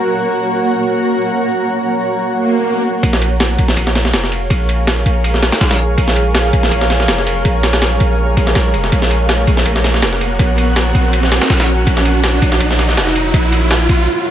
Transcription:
Already playing: ambient pad A#3 F#4 A#4 C#5 F#5
2.29 swell
3.03 808-style bass A#1, ambient pad G#4 A#4 C#5 F5, kick, ride, riser
3.13 snare
3.22 ride
3.40 snare, ride
3.58 808-style bass A#1, ride
3.68 snare
3.77 kick, ride
3.87 snare
3.95 snare, ride
4.05 snare
4.13 808-style bass F1, snare, ride
4.24 snare
4.32 ride
4.50 808-style bass A#1, kick, ride
4.69 ride
4.87 snare, ride
5.06 808-style bass A#1, ride
5.24 ride
5.34 snare
5.42 snare, ride
5.52 snare, ride
5.61 808-style bass A#1, snare, ride
5.71 snare, ride
5.98 808-style bass A#1, kick, ride
6.08 snare
6.16 ride
6.35 snare, ride
6.53 808-style bass A#1, ride
6.63 snare
6.71 kick, ride
6.81 snare
6.90 snare, ride
7.00 snare
7.08 808-style bass F1, snare, ride
7.18 snare
7.27 ride
7.45 808-style bass A#1, kick, ride
7.63 snare, ride
7.73 snare, ride
7.82 snare, ride
8.00 808-style bass A#1, ride
8.37 808-style bass A#1, kick, ride
8.47 snare
8.55 808-style bass A#1, snare, ride
8.74 808-style bass F1, ride
8.84 snare
8.92 808-style bass A#1, ambient pad F#4 F#5, kick, ride
9.02 snare
9.11 ride
9.29 snare, ride
9.47 808-style bass A#1, ride
9.57 snare
9.66 kick, ride
9.76 snare
9.84 snare, ride
9.94 snare
10.02 808-style bass F1, snare, ride
10.12 snare
10.21 ride
10.39 808-style bass A#1, kick, ride
10.58 ride
10.76 snare, ride
10.95 808-style bass A#1, ride
11.13 ride
11.23 snare
11.32 snare, ride
11.41 snare, ride
11.50 808-style bass A#1, snare, ride
11.60 snare, ride
11.87 808-style bass A#1, kick, ride
11.97 snare
12.05 ride
12.24 snare, ride
12.42 808-style bass A#1, kick, ride
12.52 snare
12.60 kick, ride
12.70 snare
12.79 snare, ride
12.89 snare
12.97 808-style bass F1, snare, ride
13.07 snare
13.16 ride
13.34 808-style bass A#1, kick, ride
13.52 ride
13.71 snare, ride
13.89 808-style bass A#1, ride

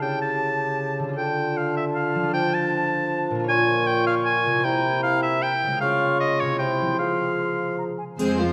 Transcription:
Already playing: harp C#3 A3 E4 G4 A4, flute A5
0.02 bassoon C#3, clarinet G4, oboe G5
0.22 oboe A5
0.99 harp D3
1.04 harp D4
1.09 harp F4
1.13 harp A4
1.17 bassoon D3, clarinet F4, oboe G5, flute A5
1.57 oboe F5
1.77 oboe E5
1.95 oboe F5
2.15 harp F3
2.20 harp D4
2.24 harp F4
2.28 harp A4
2.33 bassoon F3, clarinet D4, oboe G5
2.54 oboe A5
3.30 harp A#2
3.35 harp A#3
3.40 harp F4
3.44 harp C#5
3.48 bassoon A#2, clarinet F4, oboe G#5, flute C#6
3.87 oboe G5
4.07 oboe F5
4.25 oboe G#5
4.46 harp C3
4.51 harp A#3
4.55 harp E4
4.60 harp C5
4.64 bassoon C3, clarinet E4, oboe G5, flute A#5
5.03 oboe F5
5.23 oboe E5
5.43 oboe G5
5.63 harp C#3
5.68 harp G#3
5.72 harp F4
5.77 harp F5
5.81 bassoon C#3, clarinet F4, oboe F5, flute C#6
6.20 oboe D#5
6.40 harp C3, oboe C#5
6.46 harp C4
6.51 harp E4
6.55 harp C5, oboe G5
6.60 bassoon C3, clarinet E4, flute C6
6.81 harp F3
6.86 harp C4
6.90 harp G#4
6.95 harp C5
6.99 bassoon F3, clarinet G#4, oboe F5
7.39 flute C6
7.78 flute A#5
7.98 flute G#5
8.18 cello section F2, harp F3, viola section G#3 C4, violin section G#4 C5, triangle
8.38 viola section F3 G#3, violin section F4 C5, harp F4

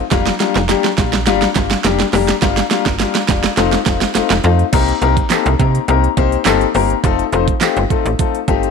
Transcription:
0.11 fm bass F1, grand piano G3 A#3 D4 F4, kick, snare, closed hi-hat
0.27 snare
0.40 grand piano G3 A#3 D4 F4, snare, closed hi-hat
0.56 fm bass F1, snare
0.69 grand piano G3 A#3 D4 G4, snare, closed hi-hat
0.84 snare
0.98 fm bass A#1, grand piano G3 A#3 D4 F4, kick, snare, closed hi-hat
1.13 snare
1.27 fm bass G1, grand piano G3 A#3 D4 F4, snare, closed hi-hat
1.42 snare
1.55 fm bass G1, grand piano G3 A#3 D4 F4, kick, snare, closed hi-hat
1.71 snare
1.84 fm bass F1, grand piano G3 A#3 D4 G4, snare, closed hi-hat
2.00 snare
2.13 fm bass F1, grand piano G3 A#3 D4 G4, snare, open hi-hat
2.29 snare, closed hi-hat
2.42 fm bass G1, grand piano G3 A#3 D4 F4, kick, snare, closed hi-hat
2.57 snare, closed hi-hat
2.71 grand piano G3 A#3 D4 F4, snare, closed hi-hat
2.86 fm bass G1, kick, snare
3.00 grand piano G3 A#3 D4 F4, snare, closed hi-hat
3.15 snare
3.28 fm bass F1, grand piano G3 A#3 D4 F4, kick, snare, closed hi-hat
3.44 snare
3.57 fm bass F1, grand piano A3 C4 D#4 F4, snare, closed hi-hat
3.73 snare
3.86 fm bass F1, grand piano A3 C4 D#4 F4, kick, snare, closed hi-hat
4.02 snare
4.15 fm bass F1, grand piano A3 C4 D#4 F4, snare, closed hi-hat
4.30 fm bass F1, snare
4.44 fm bass F2, grand piano A3 C4 D#4 F4, closed hi-hat
4.59 closed hi-hat
4.73 fm bass C2, grand piano A#3 C4 D#4 G4 A#4, kick, closed hi-hat, crash
4.88 closed hi-hat
5.01 fm bass C2, grand piano A#3 C4 D#4 G4 A#4, closed hi-hat
5.17 kick, closed hi-hat
5.30 grand piano A#3 C4 D#4 G4 A4, snare, clap, closed hi-hat
5.46 fm bass C2, closed hi-hat
5.59 fm bass C3, grand piano A#3 C4 D#4 G4 A#4, kick, closed hi-hat
5.75 closed hi-hat
5.88 fm bass C2, grand piano A#3 C4 D#4 G4 A#4, closed hi-hat
6.04 closed hi-hat
6.17 fm bass C2, grand piano A#3 C4 D#4 G4 C5, kick, closed hi-hat
6.32 closed hi-hat
6.45 fm bass G1, grand piano A#3 C4 D#4 G4 A4, snare, clap, closed hi-hat
6.61 closed hi-hat
6.74 fm bass G1, grand piano A#3 C4 D#4 G4 A#4, open hi-hat
6.90 closed hi-hat
7.03 fm bass F1, grand piano A3 C4 D#4 F4 A4, kick, closed hi-hat
7.19 closed hi-hat
7.32 fm bass F1, grand piano A3 C4 D#4 F4 C5, closed hi-hat
7.48 kick, closed hi-hat
7.61 grand piano A3 C4 D#4 F4 G4, snare, clap, closed hi-hat
7.77 fm bass G1, closed hi-hat
7.90 grand piano A3 C4 D#4 F4 A4, kick, closed hi-hat
8.06 fm bass A1, closed hi-hat
8.19 grand piano A3 C4 D#4 F4 A4, kick, closed hi-hat
8.35 closed hi-hat
8.48 fm bass G1, grand piano A3 C4 D#4 F4 G4 A5, kick, closed hi-hat
8.63 closed hi-hat

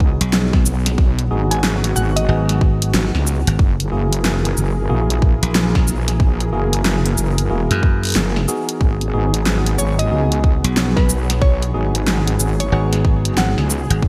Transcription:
Already playing: wobble bass C#2, analog synth pad F#3 B3 G#4, tine electric piano B3 D#4 F#4 G#4
0.00 kick
0.21 slap bass B1, closed hi-hat
0.33 snare
0.53 kick, snare
0.66 wobble bass B1, shaker
0.86 snare, closed hi-hat
0.98 analog synth pad F#4, kick
1.19 closed hi-hat
1.31 wobble bass G#1, tine electric piano B3 D#4 F#4 G#4
1.51 synth pluck G#5, closed hi-hat
1.64 snare
1.84 closed hi-hat
1.96 wobble bass G#1, synth pluck F#5, shaker
2.16 synth pluck D#5, closed hi-hat
2.29 slap bass G#1, tine electric piano B3 D#4 F#4 G#4
2.49 snare, closed hi-hat
2.61 kick
2.82 closed hi-hat
2.94 wobble bass G#1, snare
3.14 wobble bass C#2, snare
3.27 shaker
3.47 slap bass G#1, closed hi-hat
3.59 wobble bass F#1, analog synth pad E3 G#4 A#4, kick
3.80 closed hi-hat
3.92 wobble bass F#1, tine electric piano A#3 E4 F#4 G#4
4.13 closed hi-hat
4.25 snare
4.45 closed hi-hat
4.57 wobble bass F#1, shaker
4.89 wobble bass A#1, tine electric piano A#3 E4 F#4 G#4
5.10 closed hi-hat
5.22 kick
5.43 slap bass A#1, closed hi-hat
5.55 snare
5.75 kick, snare
5.87 wobble bass A#1, shaker
6.08 snare, closed hi-hat
6.20 kick
6.40 closed hi-hat
6.52 wobble bass F#1, tine electric piano A#3 E4 F#4 G#4
6.73 closed hi-hat
6.85 snare
7.06 closed hi-hat
7.18 wobble bass F#1, shaker
7.38 closed hi-hat
7.50 wobble bass E1, tine electric piano A#3 E4 F#4 G#4
7.71 slap bass F#2, snare, closed hi-hat
7.83 kick
8.04 closed hi-hat
8.05 closed hi-hat
8.07 closed hi-hat
8.09 closed hi-hat
8.10 closed hi-hat
8.12 closed hi-hat
8.14 wobble bass F#1, snare, closed hi-hat
8.36 snare
8.48 tine electric piano B3 D#4 F#4 G#4, shaker
8.69 closed hi-hat
8.80 wobble bass G#1, analog synth pad F#3 B3 G#4, kick
9.01 closed hi-hat
9.13 wobble bass G#1, tine electric piano B3 D#4 F#4 G#4
9.34 closed hi-hat
9.46 snare
9.66 closed hi-hat
9.78 wobble bass G#1, synth pluck C#5, shaker
9.99 synth pluck D#5, closed hi-hat
10.11 wobble bass C#2, tine electric piano B3 D#4 F#4 G#4
10.32 closed hi-hat
10.44 kick
10.64 slap bass B1, closed hi-hat
10.77 snare
10.97 synth pluck B4, kick, snare
11.09 wobble bass B1, shaker
11.30 snare, closed hi-hat
11.42 synth pluck C#5, kick
11.62 closed hi-hat
11.74 wobble bass G#1, tine electric piano B3 D#4 F#4 G#4
11.95 closed hi-hat
12.07 snare
12.28 closed hi-hat
12.39 wobble bass G#1, shaker
12.60 synth pluck C#5, closed hi-hat
12.72 slap bass G#1, tine electric piano B3 D#4 F#4 G#4, synth pluck C#5
12.93 snare, closed hi-hat
13.05 kick
13.25 closed hi-hat
13.37 wobble bass G#1, synth pluck F#5, snare
13.58 wobble bass C#2, snare
13.70 shaker
13.90 slap bass G#1, closed hi-hat
14.02 wobble bass F#1, analog synth pad E3 A#3, kick

